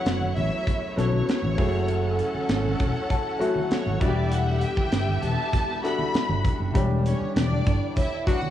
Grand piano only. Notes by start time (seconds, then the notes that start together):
Already playing: F#3 B3 C#4 G#4 A4
0.96 F#3 B3 C#4 A4
1.57 F#3 A3 E4 G#4
3.39 F#3 A3 E4 F#4
4.00 G3 D4 E4 F#4
4.08 G4
5.83 D4 E4 F#4 A4
6.74 G3 D4 G4